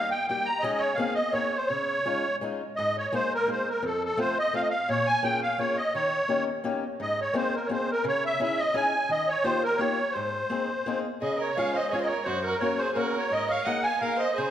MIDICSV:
0, 0, Header, 1, 4, 480
1, 0, Start_track
1, 0, Key_signature, -4, "major"
1, 0, Tempo, 352526
1, 858, Time_signature, 3, 2, 24, 8
1, 15270, Key_signature, -5, "major"
1, 19750, End_track
2, 0, Start_track
2, 0, Title_t, "Accordion"
2, 0, Program_c, 0, 21
2, 141, Note_on_c, 0, 79, 84
2, 362, Note_off_c, 0, 79, 0
2, 382, Note_on_c, 0, 79, 83
2, 616, Note_on_c, 0, 82, 92
2, 644, Note_off_c, 0, 79, 0
2, 814, Note_on_c, 0, 75, 85
2, 854, Note_off_c, 0, 82, 0
2, 1065, Note_on_c, 0, 73, 83
2, 1099, Note_off_c, 0, 75, 0
2, 1285, Note_on_c, 0, 77, 78
2, 1317, Note_off_c, 0, 73, 0
2, 1547, Note_off_c, 0, 77, 0
2, 1562, Note_on_c, 0, 75, 86
2, 1802, Note_on_c, 0, 73, 84
2, 1808, Note_off_c, 0, 75, 0
2, 2126, Note_on_c, 0, 72, 76
2, 2143, Note_off_c, 0, 73, 0
2, 2277, Note_on_c, 0, 73, 82
2, 2299, Note_off_c, 0, 72, 0
2, 3211, Note_off_c, 0, 73, 0
2, 3760, Note_on_c, 0, 75, 83
2, 4034, Note_off_c, 0, 75, 0
2, 4051, Note_on_c, 0, 73, 70
2, 4272, Note_off_c, 0, 73, 0
2, 4281, Note_on_c, 0, 72, 83
2, 4534, Note_off_c, 0, 72, 0
2, 4555, Note_on_c, 0, 70, 88
2, 4763, Note_off_c, 0, 70, 0
2, 4783, Note_on_c, 0, 72, 70
2, 5023, Note_off_c, 0, 72, 0
2, 5027, Note_on_c, 0, 70, 70
2, 5237, Note_off_c, 0, 70, 0
2, 5251, Note_on_c, 0, 69, 70
2, 5488, Note_off_c, 0, 69, 0
2, 5509, Note_on_c, 0, 69, 81
2, 5715, Note_off_c, 0, 69, 0
2, 5721, Note_on_c, 0, 72, 89
2, 5966, Note_off_c, 0, 72, 0
2, 5975, Note_on_c, 0, 75, 92
2, 6185, Note_off_c, 0, 75, 0
2, 6200, Note_on_c, 0, 77, 93
2, 6285, Note_off_c, 0, 77, 0
2, 6287, Note_on_c, 0, 75, 75
2, 6376, Note_off_c, 0, 75, 0
2, 6400, Note_on_c, 0, 77, 78
2, 6661, Note_off_c, 0, 77, 0
2, 6666, Note_on_c, 0, 73, 89
2, 6905, Note_on_c, 0, 80, 108
2, 6911, Note_off_c, 0, 73, 0
2, 7123, Note_off_c, 0, 80, 0
2, 7130, Note_on_c, 0, 79, 91
2, 7357, Note_off_c, 0, 79, 0
2, 7392, Note_on_c, 0, 77, 80
2, 7606, Note_off_c, 0, 77, 0
2, 7612, Note_on_c, 0, 73, 76
2, 7859, Note_on_c, 0, 75, 82
2, 7863, Note_off_c, 0, 73, 0
2, 8080, Note_off_c, 0, 75, 0
2, 8095, Note_on_c, 0, 73, 83
2, 8770, Note_off_c, 0, 73, 0
2, 9555, Note_on_c, 0, 75, 79
2, 9805, Note_off_c, 0, 75, 0
2, 9817, Note_on_c, 0, 73, 70
2, 10030, Note_off_c, 0, 73, 0
2, 10031, Note_on_c, 0, 72, 77
2, 10284, Note_off_c, 0, 72, 0
2, 10294, Note_on_c, 0, 70, 75
2, 10429, Note_on_c, 0, 73, 44
2, 10450, Note_off_c, 0, 70, 0
2, 10485, Note_off_c, 0, 73, 0
2, 10517, Note_on_c, 0, 72, 71
2, 10764, Note_off_c, 0, 72, 0
2, 10775, Note_on_c, 0, 70, 82
2, 10966, Note_off_c, 0, 70, 0
2, 10998, Note_on_c, 0, 73, 89
2, 11219, Note_off_c, 0, 73, 0
2, 11239, Note_on_c, 0, 76, 99
2, 11455, Note_off_c, 0, 76, 0
2, 11478, Note_on_c, 0, 76, 90
2, 11683, Note_on_c, 0, 75, 91
2, 11718, Note_off_c, 0, 76, 0
2, 11913, Note_off_c, 0, 75, 0
2, 11924, Note_on_c, 0, 80, 96
2, 12403, Note_off_c, 0, 80, 0
2, 12404, Note_on_c, 0, 75, 88
2, 12639, Note_on_c, 0, 73, 85
2, 12653, Note_off_c, 0, 75, 0
2, 12850, Note_on_c, 0, 72, 93
2, 12864, Note_off_c, 0, 73, 0
2, 13116, Note_off_c, 0, 72, 0
2, 13125, Note_on_c, 0, 70, 89
2, 13311, Note_on_c, 0, 73, 77
2, 13344, Note_off_c, 0, 70, 0
2, 13774, Note_on_c, 0, 72, 65
2, 13810, Note_off_c, 0, 73, 0
2, 14973, Note_off_c, 0, 72, 0
2, 15271, Note_on_c, 0, 75, 65
2, 15533, Note_on_c, 0, 73, 64
2, 15538, Note_off_c, 0, 75, 0
2, 15747, Note_on_c, 0, 77, 75
2, 15763, Note_off_c, 0, 73, 0
2, 15999, Note_on_c, 0, 75, 79
2, 16017, Note_off_c, 0, 77, 0
2, 16210, Note_on_c, 0, 73, 66
2, 16234, Note_off_c, 0, 75, 0
2, 16327, Note_off_c, 0, 73, 0
2, 16349, Note_on_c, 0, 75, 63
2, 16418, Note_on_c, 0, 73, 75
2, 16443, Note_off_c, 0, 75, 0
2, 16670, Note_on_c, 0, 72, 65
2, 16708, Note_off_c, 0, 73, 0
2, 16928, Note_on_c, 0, 70, 67
2, 16952, Note_off_c, 0, 72, 0
2, 17144, Note_on_c, 0, 73, 72
2, 17173, Note_off_c, 0, 70, 0
2, 17394, Note_on_c, 0, 72, 83
2, 17428, Note_off_c, 0, 73, 0
2, 17588, Note_off_c, 0, 72, 0
2, 17618, Note_on_c, 0, 72, 54
2, 17635, Note_on_c, 0, 70, 68
2, 17667, Note_off_c, 0, 72, 0
2, 17911, Note_off_c, 0, 70, 0
2, 17942, Note_on_c, 0, 73, 66
2, 18136, Note_on_c, 0, 75, 81
2, 18158, Note_off_c, 0, 73, 0
2, 18372, Note_on_c, 0, 77, 77
2, 18403, Note_off_c, 0, 75, 0
2, 18580, Note_on_c, 0, 78, 83
2, 18613, Note_off_c, 0, 77, 0
2, 18833, Note_on_c, 0, 80, 83
2, 18864, Note_off_c, 0, 78, 0
2, 19068, Note_on_c, 0, 77, 72
2, 19085, Note_off_c, 0, 80, 0
2, 19314, Note_on_c, 0, 75, 75
2, 19351, Note_off_c, 0, 77, 0
2, 19537, Note_on_c, 0, 72, 75
2, 19569, Note_off_c, 0, 75, 0
2, 19750, Note_off_c, 0, 72, 0
2, 19750, End_track
3, 0, Start_track
3, 0, Title_t, "Violin"
3, 0, Program_c, 1, 40
3, 15268, Note_on_c, 1, 68, 65
3, 15506, Note_off_c, 1, 68, 0
3, 15514, Note_on_c, 1, 70, 61
3, 15723, Note_off_c, 1, 70, 0
3, 15731, Note_on_c, 1, 73, 64
3, 15982, Note_off_c, 1, 73, 0
3, 15989, Note_on_c, 1, 72, 57
3, 16202, Note_off_c, 1, 72, 0
3, 16210, Note_on_c, 1, 68, 70
3, 16315, Note_off_c, 1, 68, 0
3, 16339, Note_on_c, 1, 72, 49
3, 16413, Note_off_c, 1, 72, 0
3, 16421, Note_on_c, 1, 70, 64
3, 16682, Note_off_c, 1, 70, 0
3, 16698, Note_on_c, 1, 66, 73
3, 16936, Note_off_c, 1, 66, 0
3, 16944, Note_on_c, 1, 66, 66
3, 17158, Note_off_c, 1, 66, 0
3, 17166, Note_on_c, 1, 70, 60
3, 17411, Note_off_c, 1, 70, 0
3, 17418, Note_on_c, 1, 68, 58
3, 17582, Note_off_c, 1, 68, 0
3, 17604, Note_on_c, 1, 68, 48
3, 17638, Note_off_c, 1, 68, 0
3, 17646, Note_on_c, 1, 66, 71
3, 17891, Note_off_c, 1, 66, 0
3, 17903, Note_on_c, 1, 70, 68
3, 18116, Note_off_c, 1, 70, 0
3, 18130, Note_on_c, 1, 70, 79
3, 18373, Note_off_c, 1, 70, 0
3, 18389, Note_on_c, 1, 73, 78
3, 18579, Note_off_c, 1, 73, 0
3, 18587, Note_on_c, 1, 75, 61
3, 18828, Note_off_c, 1, 75, 0
3, 18836, Note_on_c, 1, 77, 68
3, 19062, Note_off_c, 1, 77, 0
3, 19083, Note_on_c, 1, 70, 78
3, 19312, Note_off_c, 1, 70, 0
3, 19320, Note_on_c, 1, 72, 71
3, 19534, Note_off_c, 1, 72, 0
3, 19542, Note_on_c, 1, 68, 69
3, 19750, Note_off_c, 1, 68, 0
3, 19750, End_track
4, 0, Start_track
4, 0, Title_t, "Steel-string acoustic guitar"
4, 0, Program_c, 2, 25
4, 0, Note_on_c, 2, 55, 49
4, 0, Note_on_c, 2, 58, 49
4, 0, Note_on_c, 2, 63, 55
4, 0, Note_on_c, 2, 67, 63
4, 161, Note_off_c, 2, 55, 0
4, 167, Note_off_c, 2, 58, 0
4, 174, Note_off_c, 2, 63, 0
4, 177, Note_off_c, 2, 67, 0
4, 397, Note_on_c, 2, 55, 58
4, 405, Note_on_c, 2, 58, 45
4, 413, Note_on_c, 2, 63, 42
4, 417, Note_on_c, 2, 67, 55
4, 644, Note_off_c, 2, 55, 0
4, 646, Note_off_c, 2, 58, 0
4, 652, Note_off_c, 2, 63, 0
4, 653, Note_off_c, 2, 67, 0
4, 856, Note_on_c, 2, 56, 71
4, 866, Note_on_c, 2, 61, 65
4, 869, Note_on_c, 2, 63, 68
4, 876, Note_on_c, 2, 68, 86
4, 1245, Note_off_c, 2, 56, 0
4, 1247, Note_off_c, 2, 61, 0
4, 1251, Note_off_c, 2, 63, 0
4, 1253, Note_off_c, 2, 68, 0
4, 1328, Note_on_c, 2, 58, 59
4, 1337, Note_on_c, 2, 60, 48
4, 1347, Note_on_c, 2, 63, 55
4, 1354, Note_on_c, 2, 68, 62
4, 1587, Note_off_c, 2, 58, 0
4, 1592, Note_off_c, 2, 60, 0
4, 1598, Note_off_c, 2, 63, 0
4, 1600, Note_off_c, 2, 68, 0
4, 1808, Note_on_c, 2, 58, 53
4, 1811, Note_on_c, 2, 60, 45
4, 1826, Note_on_c, 2, 63, 52
4, 1835, Note_on_c, 2, 68, 48
4, 2072, Note_off_c, 2, 60, 0
4, 2073, Note_off_c, 2, 58, 0
4, 2081, Note_off_c, 2, 63, 0
4, 2086, Note_off_c, 2, 68, 0
4, 2315, Note_on_c, 2, 49, 61
4, 2676, Note_off_c, 2, 49, 0
4, 2796, Note_on_c, 2, 56, 49
4, 2802, Note_on_c, 2, 61, 55
4, 2806, Note_on_c, 2, 65, 63
4, 2814, Note_on_c, 2, 63, 51
4, 3053, Note_off_c, 2, 56, 0
4, 3055, Note_off_c, 2, 61, 0
4, 3059, Note_off_c, 2, 63, 0
4, 3059, Note_off_c, 2, 65, 0
4, 3283, Note_on_c, 2, 56, 61
4, 3297, Note_on_c, 2, 61, 41
4, 3305, Note_on_c, 2, 63, 60
4, 3311, Note_on_c, 2, 65, 53
4, 3545, Note_off_c, 2, 56, 0
4, 3552, Note_off_c, 2, 61, 0
4, 3556, Note_off_c, 2, 63, 0
4, 3559, Note_off_c, 2, 65, 0
4, 3791, Note_on_c, 2, 44, 74
4, 4150, Note_off_c, 2, 44, 0
4, 4253, Note_on_c, 2, 56, 64
4, 4262, Note_on_c, 2, 58, 51
4, 4265, Note_on_c, 2, 63, 51
4, 4275, Note_on_c, 2, 68, 58
4, 4513, Note_off_c, 2, 56, 0
4, 4515, Note_off_c, 2, 58, 0
4, 4518, Note_off_c, 2, 63, 0
4, 4523, Note_off_c, 2, 68, 0
4, 4714, Note_on_c, 2, 56, 54
4, 4720, Note_on_c, 2, 58, 47
4, 4734, Note_on_c, 2, 63, 50
4, 4744, Note_on_c, 2, 68, 45
4, 4982, Note_off_c, 2, 56, 0
4, 4984, Note_off_c, 2, 58, 0
4, 4991, Note_off_c, 2, 63, 0
4, 4997, Note_off_c, 2, 68, 0
4, 5209, Note_on_c, 2, 41, 68
4, 5571, Note_off_c, 2, 41, 0
4, 5680, Note_on_c, 2, 57, 66
4, 5690, Note_on_c, 2, 60, 55
4, 5695, Note_on_c, 2, 65, 46
4, 5701, Note_on_c, 2, 69, 56
4, 5940, Note_off_c, 2, 57, 0
4, 5942, Note_off_c, 2, 60, 0
4, 5946, Note_off_c, 2, 65, 0
4, 5950, Note_off_c, 2, 69, 0
4, 6170, Note_on_c, 2, 57, 47
4, 6180, Note_on_c, 2, 60, 43
4, 6182, Note_on_c, 2, 65, 45
4, 6189, Note_on_c, 2, 69, 57
4, 6421, Note_off_c, 2, 57, 0
4, 6422, Note_off_c, 2, 60, 0
4, 6426, Note_off_c, 2, 65, 0
4, 6430, Note_off_c, 2, 69, 0
4, 6653, Note_on_c, 2, 46, 71
4, 7003, Note_off_c, 2, 46, 0
4, 7117, Note_on_c, 2, 58, 62
4, 7126, Note_on_c, 2, 61, 58
4, 7134, Note_on_c, 2, 65, 62
4, 7142, Note_on_c, 2, 68, 64
4, 7368, Note_off_c, 2, 58, 0
4, 7372, Note_off_c, 2, 61, 0
4, 7376, Note_off_c, 2, 65, 0
4, 7380, Note_off_c, 2, 68, 0
4, 7602, Note_on_c, 2, 58, 53
4, 7612, Note_on_c, 2, 65, 50
4, 7613, Note_on_c, 2, 61, 43
4, 7623, Note_on_c, 2, 68, 57
4, 7850, Note_off_c, 2, 58, 0
4, 7854, Note_off_c, 2, 65, 0
4, 7856, Note_off_c, 2, 61, 0
4, 7861, Note_off_c, 2, 68, 0
4, 8098, Note_on_c, 2, 51, 70
4, 8447, Note_off_c, 2, 51, 0
4, 8554, Note_on_c, 2, 58, 46
4, 8560, Note_on_c, 2, 61, 55
4, 8571, Note_on_c, 2, 67, 56
4, 8578, Note_on_c, 2, 63, 47
4, 8810, Note_off_c, 2, 58, 0
4, 8811, Note_off_c, 2, 61, 0
4, 8818, Note_off_c, 2, 67, 0
4, 8822, Note_off_c, 2, 63, 0
4, 9037, Note_on_c, 2, 58, 61
4, 9045, Note_on_c, 2, 61, 53
4, 9052, Note_on_c, 2, 63, 53
4, 9057, Note_on_c, 2, 67, 71
4, 9296, Note_off_c, 2, 58, 0
4, 9300, Note_off_c, 2, 61, 0
4, 9304, Note_off_c, 2, 63, 0
4, 9305, Note_off_c, 2, 67, 0
4, 9528, Note_on_c, 2, 44, 63
4, 9892, Note_off_c, 2, 44, 0
4, 9985, Note_on_c, 2, 58, 57
4, 9994, Note_on_c, 2, 60, 57
4, 10000, Note_on_c, 2, 63, 55
4, 10003, Note_on_c, 2, 68, 65
4, 10254, Note_off_c, 2, 58, 0
4, 10258, Note_off_c, 2, 60, 0
4, 10260, Note_off_c, 2, 63, 0
4, 10262, Note_off_c, 2, 68, 0
4, 10475, Note_on_c, 2, 58, 56
4, 10483, Note_on_c, 2, 60, 42
4, 10494, Note_on_c, 2, 63, 37
4, 10500, Note_on_c, 2, 68, 60
4, 10736, Note_off_c, 2, 58, 0
4, 10740, Note_off_c, 2, 60, 0
4, 10745, Note_off_c, 2, 63, 0
4, 10749, Note_off_c, 2, 68, 0
4, 10949, Note_on_c, 2, 49, 73
4, 11316, Note_off_c, 2, 49, 0
4, 11430, Note_on_c, 2, 61, 55
4, 11437, Note_on_c, 2, 63, 48
4, 11448, Note_on_c, 2, 64, 60
4, 11458, Note_on_c, 2, 68, 59
4, 11688, Note_off_c, 2, 61, 0
4, 11690, Note_off_c, 2, 63, 0
4, 11696, Note_off_c, 2, 64, 0
4, 11701, Note_off_c, 2, 68, 0
4, 11901, Note_on_c, 2, 61, 59
4, 11907, Note_on_c, 2, 63, 49
4, 11915, Note_on_c, 2, 64, 54
4, 11920, Note_on_c, 2, 68, 61
4, 12158, Note_off_c, 2, 61, 0
4, 12162, Note_off_c, 2, 63, 0
4, 12165, Note_off_c, 2, 64, 0
4, 12168, Note_off_c, 2, 68, 0
4, 12375, Note_on_c, 2, 51, 67
4, 12737, Note_off_c, 2, 51, 0
4, 12853, Note_on_c, 2, 58, 53
4, 12859, Note_on_c, 2, 63, 60
4, 12863, Note_on_c, 2, 65, 58
4, 12879, Note_on_c, 2, 67, 74
4, 13110, Note_off_c, 2, 58, 0
4, 13112, Note_off_c, 2, 63, 0
4, 13115, Note_off_c, 2, 65, 0
4, 13122, Note_off_c, 2, 67, 0
4, 13327, Note_on_c, 2, 58, 51
4, 13334, Note_on_c, 2, 63, 60
4, 13349, Note_on_c, 2, 65, 53
4, 13355, Note_on_c, 2, 67, 67
4, 13583, Note_off_c, 2, 58, 0
4, 13584, Note_off_c, 2, 63, 0
4, 13594, Note_off_c, 2, 65, 0
4, 13594, Note_off_c, 2, 67, 0
4, 13829, Note_on_c, 2, 44, 68
4, 14182, Note_off_c, 2, 44, 0
4, 14292, Note_on_c, 2, 58, 65
4, 14298, Note_on_c, 2, 60, 56
4, 14305, Note_on_c, 2, 63, 44
4, 14313, Note_on_c, 2, 68, 55
4, 14550, Note_off_c, 2, 58, 0
4, 14553, Note_off_c, 2, 60, 0
4, 14557, Note_off_c, 2, 63, 0
4, 14561, Note_off_c, 2, 68, 0
4, 14786, Note_on_c, 2, 58, 59
4, 14790, Note_on_c, 2, 60, 55
4, 14806, Note_on_c, 2, 63, 53
4, 14810, Note_on_c, 2, 68, 66
4, 15048, Note_off_c, 2, 58, 0
4, 15048, Note_off_c, 2, 60, 0
4, 15058, Note_off_c, 2, 63, 0
4, 15058, Note_off_c, 2, 68, 0
4, 15274, Note_on_c, 2, 49, 69
4, 15639, Note_off_c, 2, 49, 0
4, 15757, Note_on_c, 2, 56, 59
4, 15763, Note_on_c, 2, 61, 57
4, 15766, Note_on_c, 2, 65, 51
4, 15782, Note_on_c, 2, 68, 57
4, 16015, Note_off_c, 2, 56, 0
4, 16017, Note_off_c, 2, 61, 0
4, 16017, Note_off_c, 2, 65, 0
4, 16026, Note_off_c, 2, 68, 0
4, 16240, Note_on_c, 2, 56, 46
4, 16241, Note_on_c, 2, 61, 45
4, 16256, Note_on_c, 2, 68, 55
4, 16257, Note_on_c, 2, 65, 51
4, 16490, Note_off_c, 2, 61, 0
4, 16492, Note_off_c, 2, 56, 0
4, 16498, Note_off_c, 2, 68, 0
4, 16501, Note_off_c, 2, 65, 0
4, 16696, Note_on_c, 2, 42, 71
4, 17062, Note_off_c, 2, 42, 0
4, 17170, Note_on_c, 2, 58, 58
4, 17183, Note_on_c, 2, 61, 49
4, 17187, Note_on_c, 2, 66, 53
4, 17199, Note_on_c, 2, 70, 55
4, 17432, Note_off_c, 2, 58, 0
4, 17438, Note_off_c, 2, 61, 0
4, 17442, Note_off_c, 2, 66, 0
4, 17444, Note_off_c, 2, 70, 0
4, 17642, Note_on_c, 2, 58, 50
4, 17647, Note_on_c, 2, 61, 41
4, 17655, Note_on_c, 2, 66, 48
4, 17657, Note_on_c, 2, 70, 51
4, 17907, Note_off_c, 2, 58, 0
4, 17908, Note_off_c, 2, 61, 0
4, 17913, Note_off_c, 2, 70, 0
4, 17914, Note_off_c, 2, 66, 0
4, 18111, Note_on_c, 2, 44, 61
4, 18487, Note_off_c, 2, 44, 0
4, 18605, Note_on_c, 2, 63, 54
4, 18606, Note_on_c, 2, 58, 61
4, 18612, Note_on_c, 2, 68, 46
4, 18620, Note_on_c, 2, 70, 65
4, 18867, Note_off_c, 2, 63, 0
4, 18869, Note_off_c, 2, 58, 0
4, 18872, Note_off_c, 2, 68, 0
4, 18876, Note_off_c, 2, 70, 0
4, 19079, Note_on_c, 2, 58, 53
4, 19090, Note_on_c, 2, 63, 49
4, 19099, Note_on_c, 2, 68, 45
4, 19105, Note_on_c, 2, 70, 47
4, 19349, Note_off_c, 2, 58, 0
4, 19354, Note_off_c, 2, 63, 0
4, 19359, Note_off_c, 2, 68, 0
4, 19360, Note_off_c, 2, 70, 0
4, 19580, Note_on_c, 2, 49, 71
4, 19750, Note_off_c, 2, 49, 0
4, 19750, End_track
0, 0, End_of_file